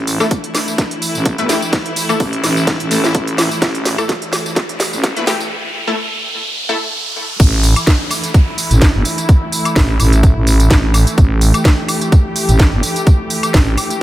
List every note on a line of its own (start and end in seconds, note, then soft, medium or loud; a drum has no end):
0.00 0.18 A1 loud
0.00 5.47 E3 medium
0.00 5.47 A3 medium
0.00 5.47 E4 medium
0.00 riser medium
0.07 open hi-hat loud
0.07 tambourine medium
0.20 0.27 A3 loud
0.20 0.27 E4 medium
0.20 0.27 A4 loud
0.20 snare soft
0.20 tambourine soft
0.20 high woodblock medium
0.31 kick loud
0.31 closed hi-hat medium
0.31 tambourine soft
0.44 closed hi-hat medium
0.55 snare medium
0.55 open hi-hat loud
0.55 tambourine medium
0.55 high woodblock medium
0.68 tambourine soft
0.78 kick loud
0.78 snare medium
0.78 closed hi-hat medium
0.78 tambourine soft
0.91 closed hi-hat medium
1.02 open hi-hat loud
1.02 tambourine medium
1.15 1.36 A1 medium
1.15 tambourine soft
1.25 kick loud
1.25 closed hi-hat medium
1.25 tambourine soft
1.38 1.47 G1 loud
1.38 1.47 A3 loud
1.38 1.47 E4 medium
1.38 1.47 B4 loud
1.38 closed hi-hat medium
1.49 1.57 A3 loud
1.49 1.57 E4 medium
1.49 1.57 G4 loud
1.49 snare medium
1.49 open hi-hat loud
1.49 tambourine medium
1.62 tambourine soft
1.73 kick loud
1.73 snare medium
1.73 closed hi-hat medium
1.73 tambourine soft
1.86 closed hi-hat medium
1.96 open hi-hat loud
1.96 tambourine medium
2.09 2.16 A3 medium
2.09 2.16 E4 medium
2.09 2.16 A4 medium
2.09 tambourine soft
2.09 high woodblock medium
2.20 2.42 A1 loud
2.20 kick loud
2.20 open hi-hat medium
2.20 tambourine soft
2.33 closed hi-hat medium
2.44 2.78 A1 loud
2.44 snare medium
2.44 open hi-hat loud
2.44 tambourine medium
2.44 high woodblock medium
2.57 tambourine soft
2.67 kick loud
2.67 snare medium
2.67 closed hi-hat medium
2.67 tambourine soft
2.80 3.13 A1 loud
2.80 closed hi-hat medium
2.91 2.99 A3 medium
2.91 2.99 E4 medium
2.91 2.99 A4 medium
2.91 open hi-hat loud
2.91 tambourine medium
3.04 snare medium
3.04 tambourine soft
3.15 3.49 A1 loud
3.15 kick loud
3.15 closed hi-hat medium
3.15 tambourine soft
3.27 closed hi-hat medium
3.38 snare medium
3.38 open hi-hat loud
3.38 tambourine medium
3.38 high woodblock medium
3.51 tambourine soft
3.62 3.96 A1 loud
3.62 kick loud
3.62 snare medium
3.62 closed hi-hat medium
3.62 tambourine soft
3.75 closed hi-hat medium
3.85 snare medium
3.85 open hi-hat loud
3.85 tambourine medium
3.98 4.05 A3 loud
3.98 4.05 E4 medium
3.98 4.05 A4 loud
3.98 tambourine soft
3.98 high woodblock medium
4.09 kick loud
4.09 snare medium
4.09 closed hi-hat medium
4.09 tambourine soft
4.22 closed hi-hat medium
4.33 snare medium
4.33 open hi-hat loud
4.33 tambourine medium
4.33 high woodblock medium
4.46 tambourine soft
4.56 kick loud
4.56 snare medium
4.56 closed hi-hat medium
4.56 tambourine soft
4.69 closed hi-hat medium
4.80 snare medium
4.80 open hi-hat loud
4.80 tambourine medium
4.93 5.14 A1 loud
4.93 tambourine soft
5.04 kick loud
5.04 snare medium
5.04 closed hi-hat medium
5.04 tambourine soft
5.16 5.25 G1 loud
5.16 5.25 A3 loud
5.16 5.25 E4 medium
5.16 5.25 B4 loud
5.16 closed hi-hat medium
5.27 5.35 A3 loud
5.27 5.35 E4 medium
5.27 5.35 G4 loud
5.27 snare medium
5.27 open hi-hat loud
5.27 tambourine medium
5.40 tambourine soft
5.87 5.94 A3 medium
5.87 5.94 E4 medium
5.87 5.94 A4 medium
6.69 6.77 A3 medium
6.69 6.76 E4 medium
6.69 6.77 A4 loud
7.40 7.74 A1 loud
7.40 14.03 E3 medium
7.40 14.03 A3 medium
7.40 11.16 E4 medium
7.40 kick loud
7.40 closed hi-hat medium
7.40 crash loud
7.40 tambourine soft
7.40 downlifter medium
7.63 open hi-hat loud
7.63 tambourine medium
7.76 closed hi-hat medium
7.76 tambourine soft
7.76 high woodblock medium
7.87 kick loud
7.87 snare loud
7.87 closed hi-hat medium
7.87 tambourine soft
8.11 open hi-hat loud
8.11 tambourine medium
8.11 high woodblock medium
8.24 closed hi-hat medium
8.24 tambourine soft
8.34 kick loud
8.34 closed hi-hat medium
8.34 tambourine soft
8.58 open hi-hat loud
8.58 tambourine medium
8.71 8.92 A1 medium
8.71 closed hi-hat medium
8.71 tambourine soft
8.81 kick loud
8.81 snare loud
8.81 closed hi-hat medium
8.81 tambourine soft
8.94 9.03 G1 loud
9.05 open hi-hat loud
9.05 tambourine medium
9.18 closed hi-hat medium
9.18 tambourine soft
9.29 kick loud
9.29 closed hi-hat medium
9.29 tambourine soft
9.52 open hi-hat loud
9.52 tambourine medium
9.65 closed hi-hat medium
9.65 tambourine soft
9.65 high woodblock medium
9.76 9.98 A1 loud
9.76 kick loud
9.76 snare loud
9.76 open hi-hat medium
9.76 tambourine soft
9.99 10.34 A1 loud
9.99 open hi-hat loud
9.99 tambourine medium
9.99 high woodblock medium
10.13 closed hi-hat medium
10.13 tambourine soft
10.23 kick loud
10.23 closed hi-hat medium
10.23 tambourine soft
10.36 10.69 A1 medium
10.47 open hi-hat loud
10.47 tambourine medium
10.60 closed hi-hat medium
10.60 tambourine soft
10.70 11.05 A1 medium
10.70 kick loud
10.70 snare loud
10.70 closed hi-hat medium
10.70 tambourine soft
10.94 open hi-hat loud
10.94 tambourine medium
10.94 high woodblock medium
11.07 closed hi-hat medium
11.07 tambourine soft
11.18 11.52 A1 loud
11.18 14.03 G4 medium
11.18 kick loud
11.18 closed hi-hat medium
11.18 tambourine soft
11.41 open hi-hat loud
11.41 tambourine medium
11.54 closed hi-hat medium
11.54 tambourine soft
11.54 high woodblock medium
11.65 kick loud
11.65 snare loud
11.65 closed hi-hat medium
11.65 tambourine soft
11.88 open hi-hat loud
11.88 tambourine medium
11.88 high woodblock medium
12.01 closed hi-hat medium
12.01 tambourine soft
12.12 kick loud
12.12 closed hi-hat medium
12.12 tambourine soft
12.36 open hi-hat loud
12.36 tambourine medium
12.49 12.70 A1 loud
12.49 closed hi-hat medium
12.49 tambourine soft
12.59 kick loud
12.59 snare loud
12.59 closed hi-hat medium
12.59 tambourine soft
12.72 12.81 G1 loud
12.83 open hi-hat loud
12.83 tambourine medium
12.96 closed hi-hat medium
12.96 tambourine soft
13.07 kick loud
13.07 closed hi-hat medium
13.07 tambourine soft
13.30 open hi-hat loud
13.30 tambourine medium
13.43 closed hi-hat medium
13.43 tambourine soft
13.43 high woodblock medium
13.54 13.76 A1 loud
13.54 kick loud
13.54 snare loud
13.54 open hi-hat medium
13.54 tambourine soft
13.77 open hi-hat loud
13.77 tambourine medium
13.77 high woodblock medium
13.90 closed hi-hat medium
13.90 tambourine soft